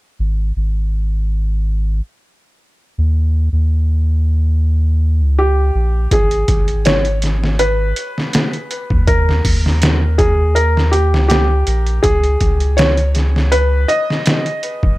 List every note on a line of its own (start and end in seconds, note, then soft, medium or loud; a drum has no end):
0.19 0.52 G#1 medium
0.56 2.01 G#1 medium
2.98 3.49 D#2 medium
3.52 5.22 D#2 medium
5.20 5.71 C#2 medium
5.39 6.14 G4 medium
5.75 6.08 A#1 medium
6.11 6.44 G#1 loud
6.11 6.88 G#4 medium
6.11 kick loud
6.11 closed hi-hat medium
6.31 closed hi-hat soft
6.48 7.93 G#1 medium
6.48 kick medium
6.48 closed hi-hat medium
6.68 closed hi-hat soft
6.85 7.62 C#5 medium
6.85 snare loud
6.85 closed hi-hat medium
7.05 closed hi-hat soft
7.22 snare soft
7.22 closed hi-hat medium
7.44 snare soft
7.59 9.04 B4 medium
7.59 closed hi-hat medium
7.96 closed hi-hat medium
8.18 snare soft
8.33 snare loud
8.33 closed hi-hat medium
8.53 closed hi-hat soft
8.71 closed hi-hat medium
8.90 9.41 D#2 medium
8.90 kick medium
9.07 10.22 A#4 medium
9.07 kick loud
9.07 closed hi-hat medium
9.29 snare soft
9.45 11.14 D#2 medium
9.45 kick medium
9.45 open hi-hat medium
9.66 snare soft
9.82 snare loud
9.82 closed hi-hat medium
10.18 10.57 G#4 medium
10.18 kick medium
10.18 closed hi-hat medium
10.55 10.94 A#4 medium
10.55 closed hi-hat medium
10.77 snare soft
10.91 11.27 G4 medium
10.91 closed hi-hat medium
11.13 11.64 C#2 medium
11.13 snare soft
11.28 12.06 G4 medium
11.28 snare loud
11.28 closed hi-hat medium
11.67 12.00 A#1 medium
11.67 closed hi-hat medium
11.87 closed hi-hat soft
12.03 12.37 C#2 loud
12.03 12.80 G#4 medium
12.03 kick medium
12.03 closed hi-hat medium
12.24 closed hi-hat soft
12.41 13.86 C#2 medium
12.41 kick medium
12.41 closed hi-hat medium
12.60 closed hi-hat soft
12.77 13.54 C#5 medium
12.77 snare loud
12.77 closed hi-hat medium
12.97 closed hi-hat soft
13.15 snare soft
13.15 closed hi-hat medium
13.36 snare soft
13.52 13.90 B4 medium
13.52 closed hi-hat medium
13.88 14.98 D#5 loud
13.88 closed hi-hat medium
14.10 snare soft
14.26 snare loud
14.26 closed hi-hat medium
14.46 closed hi-hat soft
14.63 closed hi-hat medium
14.83 14.98 E1 medium
14.83 kick medium